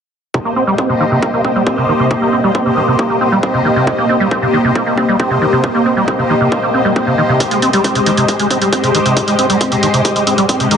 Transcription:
0.34 C3, kick
0.45 A#3
0.56 C4
0.67 G3
0.78 C4, kick
0.89 C3
1.00 D#3
1.11 C3
1.23 A#3, kick
1.34 A#3
1.45 C4, kick
1.56 G3
1.67 C4, kick
1.78 C3
1.89 D#3
2.00 C3
2.11 C3, kick
2.22 A#3
2.33 C4
2.44 G3
2.55 C4, kick
2.66 C3
2.77 D#3
2.88 C3
2.99 A#3, kick
3.10 A#3
3.21 C4
3.32 G3
3.43 C4, kick
3.54 C3
3.65 D#3
3.76 C3
3.87 C3, kick
3.98 A#3
4.09 C4
4.20 G3
4.31 C4, kick
4.42 C3
4.53 D#3
4.64 C3
4.75 A#3, kick
4.86 A#3
4.97 C4, kick
5.08 G3
5.20 C4, kick
5.31 C3
5.42 D#3
5.53 C3
5.64 C3, kick
5.75 A#3
5.86 C4
5.97 G3
6.08 C4, kick
6.19 C3
6.30 D#3
6.41 C3
6.52 A#3, kick
6.63 A#3
6.74 C4
6.85 G3
6.96 C4, kick
7.07 C3
7.18 D#3
7.29 C3
7.40 C3, kick, closed hi-hat
7.51 G#3, closed hi-hat
7.62 C4, closed hi-hat
7.73 G3, closed hi-hat
7.84 C4, kick, closed hi-hat
7.95 C3, closed hi-hat
8.06 D#3, closed hi-hat
8.17 C3, closed hi-hat
8.28 G#3, kick, closed hi-hat
8.39 G#3, closed hi-hat
8.50 C4, kick, closed hi-hat
8.61 G3, closed hi-hat
8.73 C4, kick, closed hi-hat
8.84 C3, closed hi-hat
8.95 D#3, closed hi-hat
9.06 C3, closed hi-hat
9.17 C3, kick, closed hi-hat
9.28 G#3, closed hi-hat
9.39 C4, closed hi-hat
9.50 G3, closed hi-hat
9.61 C4, kick, closed hi-hat
9.72 C3, closed hi-hat
9.83 D#3, closed hi-hat
9.94 C3, closed hi-hat
10.05 G#3, kick, closed hi-hat
10.16 G#3, closed hi-hat
10.27 C4, closed hi-hat
10.38 G3, closed hi-hat
10.49 C4, kick, closed hi-hat
10.60 C3, closed hi-hat
10.71 D#3, closed hi-hat

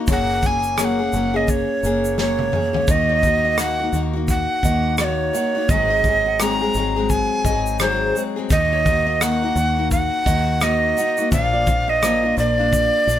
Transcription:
0.07 F#1 F#3 A#3 C#4 G#4, kick, shaker
0.12 F#5
0.42 F#3 A#3 C#4, kick, shaker
0.46 G#4 G#5
0.63 shaker
0.78 F#3 A#3 C#4 G#4 G#5, cross-stick, shaker
0.85 F#5
0.99 A#3 C#4 G#4
1.13 F#1 F#3 A#3 C#4, shaker
1.17 G#4
1.34 A#3 C#4 G#4 D#5
1.48 C#5, kick, shaker
1.83 F#1 F#3 A#3 C#4 G#4, shaker
2.05 shaker
2.18 F#3 A#3 C#4 G#4 C#5, snare
2.39 high tom
2.52 F#3 A#3 C#4 G#4, mid tom
2.73 A#3 C#4 G#4, floor tom
2.88 D#2 D#3 A#3 D#4 F#4 D#5, kick, shaker
3.09 C#5
3.23 D#3 A#3 D#4 F#4, kick, shaker
3.45 D#5
3.58 D#3 A#3 D#4 F#4 F#5, cross-stick, shaker
3.80 A#3 D#4 F#4
3.93 D#2 D#3 A#3 D#4 F#4, shaker
4.13 A#3 D#4 F#4
4.28 F#5, kick, shaker
4.63 D#2 D#3 A#3 D#4 F#4 D#5, kick, shaker
4.98 D#3 A#3 D#4 F#4 D5, cross-stick, shaker
5.04 C#5
5.33 D#3 A#3 D#4 F#4 F#5, shaker
5.55 A#3 D#4 F#4
5.69 G#1 G#2 D#3 F#3 G#3 C4 D#5, kick, shaker
5.73 G#4
5.90 D#5
6.04 F#3 G#3 C4, kick, shaker
6.08 G#4
6.26 F#5
6.40 G#2 D#3 F#3 G#3 C4 G#4 A#5, cross-stick, shaker
6.62 F#3 G#3 C4 G#4
6.74 G#1 F#3 G#3, shaker
6.78 C4 G#4
6.96 F#3 G#3 C4 G#4
7.10 G#5, kick, shaker
7.45 G#1 F#3 G#3 C4 D#5, kick, shaker
7.50 G#4
7.66 shaker
7.79 G#2 D#3 F#3 G#3 C4 G#4 C5, cross-stick, shaker
8.15 F#3 G#3 C4 G#4, shaker
8.36 F#3 G#3 C4 G#4
8.50 D#2 D#3 A#3 D#4 F#4 D#5, kick, shaker
8.73 C#5
8.85 D#3 A#3 D#4 F#4, kick, shaker
9.07 D#5
9.21 D#3 A#3 D#4 F#4 F#5, cross-stick, shaker
9.42 A#3 D#4 F#4
9.55 D#2 D#3 A#3 D#4 F#4, shaker
9.77 A#3 D#4 F#4
9.91 F#5, kick, shaker
10.26 D#2 D#3 A#3 D#4 F#4 D#5, kick, shaker
10.61 D#3 A#3 D#4 F#4 D#5, cross-stick, shaker
10.97 D#3 A#3 D#4 F#4 F#5, shaker
11.17 A#3 D#4 F#4, shaker
11.32 A#1 A#2 F3 A#3 D4 F4 F5, kick, shaker
11.53 D5
11.67 F3 A#3 D4, kick, shaker
11.71 F4
11.88 D#5 F5
12.03 A#2 F3 A#3 D4 F4, cross-stick, shaker
12.23 A#3 D4 F4
12.37 A#1 F3 A#3 D4 F4 D5, shaker
12.58 A#3 D4 F4
12.73 kick, shaker
13.06 A#1 F3 A#3 D4 F4 D5, shaker

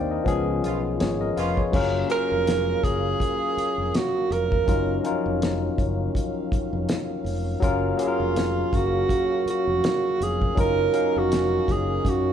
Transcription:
Already playing: D#2 C3 D#3 A#3 C4 D4 D#4 A#4 C5 D5 D#5 F5 G5
0.11 A#4 D#5
0.24 C#2 C#3 F3 G#3 B3 C#4 F4 G#4, kick, closed hi-hat
0.63 B1 C#3 F3 B3 F4, closed hi-hat
1.00 G#1 G#4 C#5, snare, closed hi-hat
1.21 A#4 D#5
1.37 F1 C#3 F3 B3 F4 B4 F5, closed hi-hat
1.57 G#4 C#5, kick
1.72 F#1 C#3 F#3 A#3 C#4 F4 F5, kick, crash
1.76 A#4
2.09 F#3 A#3 C#4 F4 A#4, closed hi-hat
2.32 F1
2.47 snare, closed hi-hat
2.84 F#1 G#4, kick, closed hi-hat
3.20 kick, closed hi-hat
3.57 muted fingered electric bass stroke, closed hi-hat
3.78 F1
3.95 F#4, snare, closed hi-hat
4.30 F1 A#4, closed hi-hat
4.52 kick
4.66 F#1 D#3 F#3 C#4 D#4 F4 A#4 F5, kick, closed hi-hat
5.03 F3 C#4 D#4 F4 A#4, closed hi-hat
5.09 F#3
5.26 F1
5.42 snare, closed hi-hat
5.78 F#1, kick, closed hi-hat
6.15 kick, closed hi-hat
6.52 muted fingered electric bass stroke, kick, closed hi-hat
6.73 F1
6.89 snare, closed hi-hat
7.24 F1, open hi-hat
7.60 F#1 C#3 F#3 A#3 C#4 F4 A#4, kick, closed hi-hat
7.97 F#3 A#3 C#4 F5, closed hi-hat
8.02 F4 G#4
8.08 A#4
8.20 F1
8.36 snare, closed hi-hat
8.73 F#1 F#4, kick, closed hi-hat
9.09 kick, closed hi-hat
9.46 muted fingered electric bass stroke, closed hi-hat
9.50 F#4
9.67 F1
9.84 snare, closed hi-hat
10.20 F1 G#4, closed hi-hat
10.42 kick
10.55 F#1 D#3 F#3 A#3 C#4 D#4 F4 A#4, kick, closed hi-hat
10.60 A#4
10.92 F#3 C#4 D#4 A#4 F5, closed hi-hat
11.16 F1 F#4
11.32 snare, closed hi-hat
11.68 F#1 G#4, kick, closed hi-hat
12.05 F#2, kick, closed hi-hat
12.09 F#4

